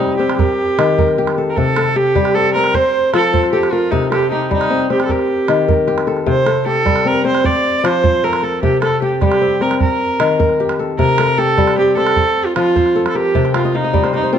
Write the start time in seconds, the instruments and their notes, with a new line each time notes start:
Already playing: kora C3 G3 G4 A4, viola D#4
0.00 kora C4
0.17 kora C4, viola G4, calabash click
0.30 calabash click
0.36 viola G4, kora A#4, calabash thump
0.79 kora D#3, calabash click
0.98 kora A#4, calabash thump
1.08 calabash click
1.18 kora G4
1.27 calabash click
1.38 kora A4
1.50 viola A#4
1.56 kora C3, viola A4, calabash thump
1.76 kora A4, calabash click
1.96 viola G4, kora G4
2.15 kora G3, calabash thump, calabash click
2.25 calabash click
2.34 kora C4, viola A4
2.54 kora C4, viola A#4, calabash click
2.64 calabash click
2.74 viola C5, kora C5, calabash thump
3.13 kora F3, viola A4, calabash click
3.33 kora C5, calabash thump
3.43 calabash click
3.53 viola G4, kora A4
3.63 calabash click
3.72 viola F4, kora A#4
3.91 kora C3, viola D#4, calabash thump
4.02 calabash click
4.11 viola G4, kora A4, calabash click
4.22 calabash click
4.31 viola D#4, kora G4
4.42 calabash click
4.51 kora G3, viola D#4, calabash thump
4.61 calabash click
4.70 kora C4
4.80 calabash click
4.90 kora C4, viola G4, calabash click
5.00 calabash click
5.05 viola A4
5.09 viola G4, kora A#4, calabash thump
5.19 calabash click
5.48 kora D#3, calabash click
5.68 kora A#4, calabash thump
5.87 kora G4, calabash click
5.98 calabash click
6.07 kora A4, calabash click
6.17 calabash click
6.26 kora C3, viola C5, calabash thump
6.46 kora A4, calabash click
6.66 kora G4, viola A4
6.86 kora G3, calabash thump, calabash click
6.96 calabash click
7.05 kora C4, viola A#4
7.25 kora C4, viola C5, calabash click
7.35 calabash click
7.44 kora C5, viola D5, calabash thump
7.78 viola D5
7.84 kora F3, viola C5, calabash click
8.04 kora C5, calabash thump
8.14 calabash click
8.24 kora A4, viola A#4
8.33 calabash click
8.43 viola A4, kora A#4
8.63 kora C3, viola G4, calabash thump
8.82 viola A4, kora A4, calabash click
9.02 kora G4, viola G4
9.21 kora G3, viola G4, calabash thump, calabash click
9.32 calabash click
9.42 kora C4
9.61 kora C4, viola A#4, calabash click
9.71 calabash click
9.80 viola A#4, calabash thump
10.20 kora D#3, calabash click
10.39 kora A#4, calabash thump
10.49 calabash click
10.60 kora G4
10.69 calabash click
10.79 kora A4
10.98 kora C3, viola A#4, calabash thump
11.18 kora A4, calabash click
11.38 kora G4, viola A4
11.58 kora G3, calabash thump, calabash click
11.68 calabash click
11.77 kora C4, viola G4
11.97 kora C4, viola A4, calabash click
12.07 calabash click
12.16 kora C5, calabash thump
12.46 viola F4
12.55 kora F3, viola F4, calabash click
12.76 kora C5, calabash thump
12.86 calabash click
12.96 kora A4
13.06 viola A4, calabash click
13.15 viola G4, kora A#4
13.35 kora C3 A5, calabash thump
13.45 kora G5, calabash click
13.54 viola F4, kora F5, calabash click
13.65 kora D#5, calabash click
13.75 viola D#4, kora F5
13.84 kora D#5
13.94 kora G3 D5, calabash thump
14.04 kora C5, calabash click
14.13 viola D#4, kora D5, calabash click
14.23 kora C5
14.33 kora C4 A#4, viola F4